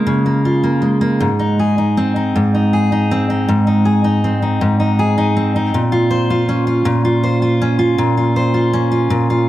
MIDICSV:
0, 0, Header, 1, 2, 480
1, 0, Start_track
1, 0, Key_signature, -4, "major"
1, 0, Tempo, 752823
1, 778, Time_signature, 6, 3, 24, 8
1, 6050, End_track
2, 0, Start_track
2, 0, Title_t, "Steel-string acoustic guitar"
2, 0, Program_c, 0, 25
2, 0, Note_on_c, 0, 56, 47
2, 0, Note_on_c, 0, 58, 43
2, 0, Note_on_c, 0, 65, 56
2, 42, Note_on_c, 0, 49, 65
2, 157, Note_off_c, 0, 58, 0
2, 164, Note_on_c, 0, 58, 38
2, 280, Note_off_c, 0, 65, 0
2, 288, Note_on_c, 0, 65, 46
2, 397, Note_off_c, 0, 58, 0
2, 405, Note_on_c, 0, 58, 45
2, 519, Note_off_c, 0, 56, 0
2, 521, Note_on_c, 0, 56, 45
2, 637, Note_off_c, 0, 58, 0
2, 644, Note_on_c, 0, 58, 44
2, 768, Note_on_c, 0, 44, 70
2, 820, Note_off_c, 0, 58, 0
2, 822, Note_off_c, 0, 49, 0
2, 824, Note_off_c, 0, 65, 0
2, 889, Note_on_c, 0, 63, 51
2, 1017, Note_on_c, 0, 68, 48
2, 1127, Note_off_c, 0, 63, 0
2, 1135, Note_on_c, 0, 63, 45
2, 1258, Note_on_c, 0, 60, 53
2, 1370, Note_off_c, 0, 63, 0
2, 1377, Note_on_c, 0, 63, 46
2, 1495, Note_off_c, 0, 44, 0
2, 1502, Note_on_c, 0, 44, 61
2, 1615, Note_off_c, 0, 63, 0
2, 1623, Note_on_c, 0, 63, 44
2, 1734, Note_off_c, 0, 68, 0
2, 1742, Note_on_c, 0, 68, 48
2, 1855, Note_off_c, 0, 63, 0
2, 1862, Note_on_c, 0, 63, 48
2, 1983, Note_off_c, 0, 60, 0
2, 1985, Note_on_c, 0, 60, 51
2, 2095, Note_off_c, 0, 63, 0
2, 2103, Note_on_c, 0, 63, 46
2, 2214, Note_off_c, 0, 44, 0
2, 2222, Note_on_c, 0, 44, 68
2, 2332, Note_off_c, 0, 63, 0
2, 2339, Note_on_c, 0, 63, 47
2, 2449, Note_off_c, 0, 68, 0
2, 2457, Note_on_c, 0, 68, 49
2, 2570, Note_off_c, 0, 63, 0
2, 2578, Note_on_c, 0, 63, 50
2, 2702, Note_off_c, 0, 60, 0
2, 2704, Note_on_c, 0, 60, 48
2, 2753, Note_off_c, 0, 56, 0
2, 2813, Note_off_c, 0, 63, 0
2, 2821, Note_on_c, 0, 63, 45
2, 2933, Note_off_c, 0, 44, 0
2, 2941, Note_on_c, 0, 44, 65
2, 3051, Note_off_c, 0, 63, 0
2, 3059, Note_on_c, 0, 63, 47
2, 3173, Note_off_c, 0, 68, 0
2, 3182, Note_on_c, 0, 68, 49
2, 3294, Note_off_c, 0, 63, 0
2, 3301, Note_on_c, 0, 63, 52
2, 3419, Note_off_c, 0, 60, 0
2, 3421, Note_on_c, 0, 60, 48
2, 3535, Note_off_c, 0, 63, 0
2, 3544, Note_on_c, 0, 63, 54
2, 3653, Note_off_c, 0, 44, 0
2, 3661, Note_on_c, 0, 46, 64
2, 3701, Note_off_c, 0, 68, 0
2, 3703, Note_off_c, 0, 63, 0
2, 3775, Note_on_c, 0, 65, 53
2, 3893, Note_on_c, 0, 72, 53
2, 4010, Note_off_c, 0, 65, 0
2, 4019, Note_on_c, 0, 65, 49
2, 4133, Note_off_c, 0, 60, 0
2, 4136, Note_on_c, 0, 61, 50
2, 4245, Note_off_c, 0, 65, 0
2, 4252, Note_on_c, 0, 65, 46
2, 4362, Note_off_c, 0, 46, 0
2, 4369, Note_on_c, 0, 46, 76
2, 4486, Note_off_c, 0, 65, 0
2, 4493, Note_on_c, 0, 65, 48
2, 4605, Note_off_c, 0, 72, 0
2, 4613, Note_on_c, 0, 72, 51
2, 4723, Note_off_c, 0, 65, 0
2, 4731, Note_on_c, 0, 65, 52
2, 4853, Note_off_c, 0, 61, 0
2, 4856, Note_on_c, 0, 61, 53
2, 4958, Note_off_c, 0, 65, 0
2, 4966, Note_on_c, 0, 65, 52
2, 5083, Note_off_c, 0, 46, 0
2, 5090, Note_on_c, 0, 46, 74
2, 5205, Note_off_c, 0, 65, 0
2, 5212, Note_on_c, 0, 65, 45
2, 5324, Note_off_c, 0, 72, 0
2, 5331, Note_on_c, 0, 72, 54
2, 5438, Note_off_c, 0, 65, 0
2, 5445, Note_on_c, 0, 65, 50
2, 5567, Note_off_c, 0, 61, 0
2, 5569, Note_on_c, 0, 61, 51
2, 5677, Note_off_c, 0, 65, 0
2, 5685, Note_on_c, 0, 65, 46
2, 5797, Note_off_c, 0, 46, 0
2, 5804, Note_on_c, 0, 46, 73
2, 5922, Note_off_c, 0, 65, 0
2, 5929, Note_on_c, 0, 65, 50
2, 6044, Note_off_c, 0, 72, 0
2, 6050, Note_off_c, 0, 46, 0
2, 6050, Note_off_c, 0, 61, 0
2, 6050, Note_off_c, 0, 65, 0
2, 6050, End_track
0, 0, End_of_file